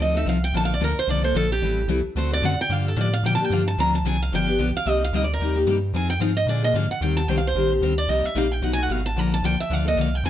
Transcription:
0.00 D2 F3 C4 D#4 A4 D#5
0.14 C4 D#4 A4 E5
0.26 C2 F3 C4 D#4 A4 F5
0.44 G5
0.53 A#1 D3 F3 A#3 D4 A4 A5
0.65 F5
0.74 D5
0.80 D2 D3 F3 A#3 D4 A4 A#4
0.96 D2 C5
1.07 C2 D3 F3 A#3 D4 A4 D5
1.23 A#3 D4 A4 C5
1.34 A#1 D3 F3 A#3 D4 A4
1.52 G4
1.61 A1 E3 G3 C4 E4 A4
1.87 C2 E3 G3 C4 E4 A4
2.03 C2
2.15 D2 D3 A3 C4 F#4 A4 C5
2.31 C4 F#4 A4 D5
2.42 F#2 D3 A3 C4 F#4 A4 F#5
2.58 F#2 G5
2.69 G2 D3 F3 A#3 D4 G4 F5
2.88 A4
2.96 A2 D3 F3 A#3 D4 G4
3.01 D5
3.13 F5
3.23 A#2 D3 F3 A#3 D4 G4 G5
3.35 A#2 A5
3.39 A#3 D4 G4
3.44 G5
3.50 G2 D3 F3 A#3 D4 G4 F5
3.68 A5
3.78 D2 D3 F3 C4 D4 G#4 A#5
3.95 A5
4.04 C2 D3 F3 C4 D4 G#4 G#5
4.22 F5
4.32 G1 D3 F3 B3 D4 G4 G5
4.47 B3 D4 G4
4.58 B1 D3 F3 B3 D4 G4
4.74 B1 F5
4.86 C2 C3 G3 A#3 D#4 G4 D#5
5.04 F5
5.13 D2 C3 G3 A#3 D#4 G4 D#5
5.24 D5
5.34 A#4
5.39 D#2 C3 G3 A#3 D#4 G4
5.55 A#3 D#4 G4
5.66 G2 C3 G3 A#3 D#4 G4
5.93 F2 F3 C4 D#4 G#4 G#5
6.10 G5
6.20 G#2 F3 C4 D#4 G#4 F5
6.37 D#5
6.46 A#2 D3 F3 A#3 D4 G#4 D5
6.62 A#3 D4 G#4 D#5
6.74 G#2 D3 F3 A#3 D4 G#4 F5
6.89 G#2 F#5
7.01 D#2 D#3 G3 C4 G4 C5 G5
7.17 A5
7.28 C2 D#3 G3 C4 G4 C5 G5
7.38 F5
7.47 C5
7.54 A#1 D#3 G3 C4 G4 C5
7.70 C4 G4 C5
7.81 D2 D#3 G3 C4 G4 C5
7.98 D5
8.08 C2 C3 G3 A#3 D#4 G4 D#5
8.23 C2 E5
8.35 A#1 C3 G3 A#3 D#4 G4 F5
8.52 G5
8.62 B1 B2 F#3 A3 D#4 F#4 F#5
8.73 F#4 G#5
8.78 A3 D#4
8.83 F#5
8.89 G#1 B2 F#3 A3 D#4 F#4 F5
9.06 A5
9.16 A#1 D3 F3 A#3 D4 A4 A#5
9.34 A5
9.42 C2 D3 F3 A#3 D4 A4 G5
9.58 C2 E5
9.70 D2 D3 F3 A#3 D4 A4 F5
9.85 A#3 D4 A4 D#5
9.96 C2 D3 F3 A#3 D4 A4
10.01 F5
10.15 G5
10.23 F2 F3 C4 D#4 G#4 G#5

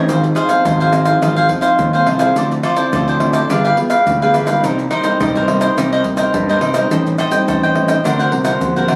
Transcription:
Already playing: F3 C4 D#4
0.08 G#1 G#2 F4 G#4 C5 F5, pandeiro, shaker, surdo
0.23 muted cavaquinho stroke, pandeiro, shaker
0.35 F4 G#4 C5 F5, pandeiro, tamborim, shaker
0.48 F3 C4 D#4 G#4 C5 F5, pandeiro, shaker
0.65 G#1 D#3 F4 G#4 C5 F5, pandeiro, tamborim, shaker, surdo
0.80 G#4 C5 F5, pandeiro, shaker
0.92 F3 C4 D#4, pandeiro, tamborim, shaker
1.05 G#4 C5 F5, pandeiro, tamborim, shaker
1.22 G#1 G#2 F4 G#4 C5 F5, pandeiro, tamborim, shaker, surdo
1.36 G#4 C5 F5, pandeiro, shaker
1.48 F3 C4 D#4, muted cavaquinho stroke, pandeiro, surdo
1.61 G#4 C5 F5, pandeiro, tamborim, shaker
1.79 D#2 D#3, pandeiro, shaker, surdo
1.93 F3 C4 D#4 G#4 C5 F5, pandeiro, shaker
2.06 C2 F4 G#4 C5 F5, pandeiro, tamborim
2.19 F3 C4 E4 G#4 C5 F5, pandeiro, tamborim, shaker
2.36 D2 D3 F4 A4 C5 D5, pandeiro, shaker, surdo
2.51 muted cavaquinho stroke, pandeiro, shaker
2.63 F4 A4 C5 D5, pandeiro, tamborim
2.76 F3 C4 E4 A4 C5 D5, pandeiro, shaker
2.93 D2 A2 F4 A4 C5 D5, pandeiro, tamborim, shaker, surdo
3.08 A4 C5 D5, pandeiro, shaker
3.20 F3 C4 E4, pandeiro, tamborim
3.33 A4 C5 D5, pandeiro, tamborim, shaker
3.50 G1 G3 B3 D4 F4 G4 G#4 B4 F5, pandeiro, tamborim, shaker, surdo
3.65 G4 B4 F5, pandeiro, shaker
3.77 B3 F4 G#4, muted cavaquinho stroke, pandeiro
3.90 G4 B4 F5, pandeiro, tamborim, shaker
4.06 D2 D3, pandeiro, shaker, surdo
4.22 B3 F4 G4 G#4 B4 F5, pandeiro, shaker
4.34 G1 D4 G4 B4 F5, pandeiro, tamborim, shaker
4.47 G3 A#3 D#4 G4 B4 F5, pandeiro, tamborim, shaker
4.63 C2 C3 D#4 A#4 C5 D#5, pandeiro, shaker, surdo
4.79 muted cavaquinho stroke, pandeiro, shaker
4.91 D#4 A#4 C5 D#5, pandeiro, tamborim
5.03 G3 A#3 D#4 A#4 C5 D#5, pandeiro, shaker
5.20 C2 G2 D#4 A#4 C5 D#5, pandeiro, tamborim, shaker, surdo
5.35 A#4 C5 D#5, pandeiro, shaker
5.47 G3 A#3 D#4, pandeiro, tamborim
5.61 A#4 C5 D#5, pandeiro, tamborim, shaker
5.77 C2 C3 D#4 A#4 C5 D#5, pandeiro, tamborim, shaker, surdo
5.93 A#4 C5 D#5, pandeiro, shaker
6.04 G3 A#3 D#4, muted cavaquinho stroke, pandeiro, surdo
6.17 A#4 C5 D#5, pandeiro, tamborim, shaker
6.34 G2, pandeiro, shaker, surdo
6.49 G3 A#3 D#4 A#4 C5 D#5, pandeiro, shaker
6.61 C2 D#4 A#4 C5 D#5, pandeiro, tamborim
6.74 G3 C4 D#4 A#4 C5 D#5, pandeiro, tamborim, shaker
6.91 A1 A2 A4 C5 D#5 G5, pandeiro, shaker, surdo
7.06 muted cavaquinho stroke, pandeiro, shaker
7.18 A4 C5 D#5 G5, pandeiro, tamborim, shaker
7.31 G3 C4 D#4 C5 D#5 G5, pandeiro, shaker
7.48 A1 A2 A4 C5 D#5 G5, pandeiro, tamborim, shaker, surdo
7.63 C5 D#5 G5, pandeiro, shaker
7.75 G3 C4 D#4, pandeiro, tamborim
7.88 C5 D#5 G5, pandeiro, tamborim, shaker
8.04 D2 D3 C4 D4 F#4 A#4 C5 F#5, pandeiro, tamborim, shaker, surdo
8.19 A#4 C5 F#5, pandeiro, shaker
8.32 C2 C4 F#4 A#4, muted cavaquinho stroke, pandeiro
8.44 A#4 C5 F#5, pandeiro, tamborim, shaker
8.61 A#1 D3, pandeiro, shaker, surdo
8.76 C4 F#4 A#4 C5 F#5, pandeiro, shaker
8.88 G#1 D4 A#4 C5 F#5, pandeiro, tamborim

